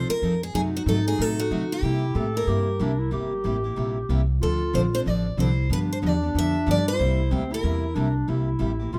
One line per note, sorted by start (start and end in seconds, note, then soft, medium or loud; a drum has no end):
0.00 0.10 F3 medium
0.00 0.10 C4 medium
0.00 0.10 D#4 medium
0.00 0.25 F4 loud
0.00 0.11 A4 medium
0.09 0.43 A#4 loud
0.09 muted upright bass stroke soft
0.22 0.53 F2 medium
0.22 0.33 F3 medium
0.22 0.33 C4 loud
0.22 0.34 D#4 loud
0.22 0.34 A4 medium
0.43 0.54 G#4 medium
0.54 0.86 F#2 medium
0.54 0.74 C3 medium
0.54 0.75 F#3 medium
0.54 0.75 A3 medium
0.54 1.79 D#4 loud
0.54 0.75 D#4 medium
0.54 0.75 F#4 medium
0.54 0.60 G#4 medium
0.77 0.82 F#4 medium
0.86 1.18 G#2 medium
0.86 0.97 C3 medium
0.86 0.98 F#3 medium
0.86 0.98 A3 medium
0.86 0.98 D#4 medium
0.86 0.98 F#4 medium
0.86 1.06 A4 medium
1.06 1.17 A3 soft
1.06 1.17 D#4 soft
1.06 1.17 F#4 medium
1.06 1.21 G#4 medium
1.17 1.50 A2 medium
1.17 1.38 C3 medium
1.17 1.38 F#3 medium
1.17 1.38 A3 medium
1.17 1.39 D#4 medium
1.17 1.39 F#4 medium
1.21 1.39 A4 loud
1.39 1.72 F#4 medium
1.51 1.62 C3 medium
1.51 1.82 D3 medium
1.51 1.62 F#3 medium
1.51 1.62 A3 loud
1.51 1.62 D#4 loud
1.51 1.62 F#4 loud
1.72 2.36 G4 medium
1.82 2.14 C3 medium
1.82 2.03 C3 medium
1.82 2.04 G3 medium
1.82 2.04 A#3 medium
1.82 2.17 E4 loud
1.82 2.04 E4 medium
1.82 2.04 G4 medium
2.15 2.47 A2 medium
2.15 2.26 C3 medium
2.15 2.26 G3 medium
2.15 2.26 A#3 medium
2.15 2.27 E4 loud
2.15 2.27 G4 medium
2.15 2.49 A4 loud
2.34 2.47 A#3 soft
2.34 2.47 E4 soft
2.34 2.47 G4 medium
2.34 3.61 A#4 medium
2.47 2.79 G2 medium
2.47 2.67 C3 medium
2.47 2.68 G3 medium
2.47 2.68 A#3 medium
2.47 2.68 E4 medium
2.47 2.83 G4 loud
2.47 2.68 G4 medium
2.79 3.11 C2 medium
2.79 2.91 C3 medium
2.79 2.91 G3 medium
2.79 2.91 A#3 loud
2.79 3.00 D4 medium
2.79 2.91 E4 loud
2.79 2.91 G4 loud
2.99 3.12 E4 medium
3.11 3.43 G1 medium
3.11 3.32 C3 medium
3.11 3.32 G3 medium
3.11 3.32 A#3 medium
3.11 3.32 E4 medium
3.11 3.32 G4 medium
3.11 4.24 G4 loud
3.44 3.76 A1 medium
3.44 3.55 C3 medium
3.44 3.55 G3 medium
3.44 3.56 A#3 medium
3.44 3.56 E4 medium
3.44 3.56 G4 medium
3.64 3.76 A#3 soft
3.64 3.76 E4 soft
3.64 3.76 G4 medium
3.76 4.08 A#1 medium
3.76 3.97 C3 medium
3.76 3.97 G3 medium
3.76 3.97 A#3 medium
3.76 3.97 E4 medium
3.76 3.97 G4 medium
4.09 4.40 C2 medium
4.09 4.20 C3 medium
4.09 4.20 G3 medium
4.09 4.20 A#3 loud
4.09 4.21 E4 loud
4.09 4.21 G4 loud
4.41 4.73 D2 medium
4.41 4.61 D3 medium
4.41 4.62 F3 medium
4.41 4.62 C4 medium
4.41 4.62 D4 medium
4.41 5.08 F4 loud
4.41 4.75 A4 medium
4.41 4.62 A4 medium
4.73 5.05 A#1 medium
4.73 4.84 D3 medium
4.73 4.85 F3 medium
4.73 4.85 C4 medium
4.73 4.85 D4 loud
4.73 4.85 A4 medium
4.73 4.80 C5 medium
4.93 5.05 C4 soft
4.93 5.05 D4 medium
4.93 5.05 A4 medium
4.93 5.00 C5 medium
5.05 5.37 A1 medium
5.05 5.26 D3 medium
5.05 5.26 F3 medium
5.05 5.26 C4 medium
5.05 5.26 D4 medium
5.05 5.26 A4 medium
5.05 5.40 D5 medium
5.37 5.69 C2 medium
5.37 5.49 D3 loud
5.37 5.49 F3 medium
5.37 5.49 C4 medium
5.37 5.49 D4 loud
5.37 5.68 E4 medium
5.37 5.49 A4 loud
5.37 5.69 C5 medium
5.70 6.01 G2 medium
5.70 5.90 D3 medium
5.70 5.90 F3 medium
5.70 5.90 B3 medium
5.70 6.95 D4 loud
5.70 5.91 D4 medium
5.70 5.91 G4 medium
5.70 5.78 B4 medium
5.93 5.98 C5 medium
6.02 6.34 E2 loud
6.02 6.13 D3 medium
6.02 6.14 F3 medium
6.02 6.13 B3 medium
6.02 6.14 D4 medium
6.02 6.14 G4 medium
6.06 6.37 D5 medium
6.22 6.35 B3 soft
6.22 6.35 D4 medium
6.22 6.34 G4 soft
6.35 6.66 F2 medium
6.35 6.55 D3 medium
6.35 6.55 F3 medium
6.35 6.55 B3 medium
6.35 6.55 D4 medium
6.35 6.56 G4 medium
6.35 6.70 E5 loud
6.66 6.98 G2 medium
6.66 6.78 D3 loud
6.66 6.78 F3 medium
6.66 6.78 B3 medium
6.66 6.78 D4 loud
6.66 6.78 G4 loud
6.71 6.87 D5 loud
6.88 7.54 C5 medium
6.93 7.01 F4 medium
6.99 7.31 C2 medium
6.99 7.19 C3 medium
6.99 7.20 G3 medium
6.99 7.20 A#3 medium
6.99 7.33 E4 loud
6.99 7.20 E4 medium
6.99 7.20 G4 medium
7.31 7.63 D2 medium
7.31 7.42 C3 medium
7.31 7.42 G3 medium
7.31 7.43 A#3 medium
7.31 7.53 C4 medium
7.31 7.43 E4 medium
7.31 7.43 G4 loud
7.51 7.63 A#3 soft
7.51 7.97 E4 loud
7.51 7.63 E4 medium
7.51 7.63 G4 medium
7.51 8.13 A#4 medium
7.64 7.95 E2 medium
7.64 7.84 C3 medium
7.64 7.84 G3 medium
7.64 7.84 A#3 medium
7.64 7.84 E4 medium
7.64 7.85 G4 medium
7.95 8.27 C2 medium
7.95 8.07 C3 loud
7.95 8.07 G3 medium
7.95 8.07 A#3 medium
7.95 8.31 D4 medium
7.95 8.07 E4 loud
7.95 8.07 G4 loud
8.28 8.60 C2 medium
8.28 8.48 C3 medium
8.28 8.48 G3 medium
8.28 8.48 A#3 medium
8.28 8.48 E4 medium
8.28 8.92 E4 loud
8.28 8.48 G4 medium
8.59 8.92 A1 medium
8.59 8.70 C3 medium
8.59 8.71 G3 medium
8.59 8.71 A#3 medium
8.59 8.71 E4 medium
8.59 8.71 G4 loud
8.79 8.93 A#3 soft
8.79 8.92 E4 soft
8.79 8.92 G4 medium
8.93 8.99 A#1 medium
8.93 8.99 C3 medium
8.93 8.99 G3 medium
8.93 8.99 A#3 medium
8.93 8.99 E4 medium
8.93 8.99 F4 medium
8.93 8.99 G4 medium